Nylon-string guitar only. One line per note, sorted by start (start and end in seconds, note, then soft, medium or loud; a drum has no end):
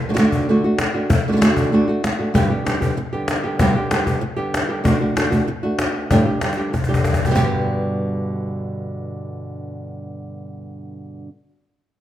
0.09 0.13 D3 medium
0.09 0.13 A3 medium
0.09 0.13 D4 medium
0.09 0.13 F#4 medium
0.14 0.17 D3 medium
0.14 0.17 A3 medium
0.14 0.18 D4 medium
0.14 0.18 F#4 medium
0.18 0.48 D3 medium
0.18 0.48 A3 medium
0.18 0.49 D4 loud
0.18 0.49 F#4 loud
0.49 0.64 D3 medium
0.49 0.64 A3 medium
0.49 0.64 D4 medium
0.49 0.63 F#4 medium
0.64 0.79 A3 medium
0.64 0.79 D4 medium
0.64 0.79 F#4 medium
0.80 muted nylon-string guitar stroke medium
0.94 1.10 A3 medium
0.94 1.10 D4 medium
0.94 1.09 F#4 medium
1.10 muted nylon-string guitar stroke medium
1.28 1.31 D3 medium
1.28 1.32 A3 medium
1.28 1.32 D4 medium
1.28 1.32 F#4 medium
1.32 1.35 D3 medium
1.32 1.36 A3 medium
1.32 1.37 D4 medium
1.32 1.37 F#4 medium
1.37 1.40 D3 medium
1.37 1.40 A3 medium
1.37 1.41 D4 medium
1.37 1.42 F#4 medium
1.41 1.71 D3 medium
1.41 1.72 A3 loud
1.41 1.73 D4 loud
1.41 1.73 F#4 loud
1.72 1.88 D3 medium
1.72 1.88 A3 medium
1.72 1.88 D4 medium
1.72 1.86 F#4 medium
1.88 2.03 A3 medium
1.88 2.03 D4 medium
1.88 2.03 F#4 medium
2.04 muted nylon-string guitar stroke medium
2.19 2.34 A3 medium
2.19 2.35 D4 medium
2.19 2.34 F#4 medium
2.34 2.50 G2 medium
2.34 2.50 B2 medium
2.34 2.50 D3 medium
2.34 2.50 G3 loud
2.34 2.49 B3 loud
2.34 2.49 G4 medium
2.50 2.64 D3 medium
2.50 2.65 G3 medium
2.50 2.65 B3 medium
2.50 2.66 G4 medium
2.65 2.81 D3 medium
2.65 2.81 G3 medium
2.65 2.80 B3 medium
2.65 2.80 G4 medium
2.81 2.96 D3 medium
2.81 2.96 G3 medium
2.81 2.97 B3 medium
2.81 2.96 G4 medium
2.97 muted nylon-string guitar stroke medium
3.13 3.44 D3 soft
3.13 3.44 G3 medium
3.13 3.43 B3 medium
3.13 3.42 G4 medium
3.44 3.59 D3 soft
3.44 3.60 G3 soft
3.44 3.60 B3 medium
3.44 3.59 G4 medium
3.60 3.75 G2 medium
3.60 3.75 B2 loud
3.60 3.75 D3 medium
3.60 3.76 G3 loud
3.60 3.75 B3 medium
3.60 3.75 G4 loud
3.76 3.89 D3 medium
3.76 3.90 G3 soft
3.76 3.91 B3 medium
3.76 3.91 G4 medium
3.91 4.06 D3 medium
3.91 4.06 G3 medium
3.91 4.05 B3 medium
3.91 4.05 G4 medium
4.06 4.20 D3 soft
4.06 4.20 G3 medium
4.06 4.20 B3 medium
4.06 4.21 G4 medium
4.21 muted nylon-string guitar stroke medium
4.36 4.69 D3 medium
4.36 4.69 G3 medium
4.36 4.68 B3 medium
4.36 4.68 G4 medium
4.69 4.83 D3 soft
4.69 4.84 G3 medium
4.69 4.84 B3 medium
4.69 4.84 G4 medium
4.84 5.00 D3 medium
4.84 5.00 A3 medium
4.84 5.00 D4 loud
4.84 4.99 F#4 loud
5.00 5.15 A3 soft
5.00 5.16 D4 medium
5.00 5.16 F#4 medium
5.16 5.31 D3 medium
5.16 5.31 A3 medium
5.16 5.31 D4 medium
5.16 5.29 F#4 medium
5.31 5.46 A3 medium
5.31 5.47 D4 medium
5.31 5.46 F#4 medium
5.47 muted nylon-string guitar stroke medium
5.63 6.10 A3 medium
5.63 6.11 D4 medium
5.63 6.09 F#4 medium
6.10 6.25 G2 medium
6.10 6.26 A2 medium
6.10 6.26 D3 loud
6.10 6.26 G3 loud
6.10 6.25 D4 loud
6.10 6.24 G4 loud
6.25 6.40 D3 soft
6.25 6.41 G3 medium
6.25 6.41 D4 medium
6.25 6.41 G4 medium
6.42 6.57 D3 medium
6.42 6.57 G3 medium
6.42 6.56 D4 medium
6.42 6.56 G4 medium
6.57 6.72 D3 soft
6.57 6.73 G3 medium
6.57 6.72 D4 medium
6.57 6.72 G4 medium
6.73 muted nylon-string guitar stroke medium
6.89 7.25 D3 medium
6.89 7.25 G3 medium
6.89 7.26 D4 medium
6.89 7.26 G4 medium
7.26 7.29 B2 medium
7.26 7.30 D3 medium
7.26 7.30 G3 medium
7.26 7.30 B3 medium
7.26 7.31 G4 medium
7.31 7.34 B2 medium
7.31 7.34 D3 medium
7.31 7.34 G3 medium
7.31 7.35 B3 medium
7.31 7.35 G4 medium
7.35 11.28 G2 medium
7.35 11.28 B2 loud
7.35 11.28 D3 medium
7.35 11.29 G3 medium
7.35 11.29 B3 loud
7.35 11.29 G4 loud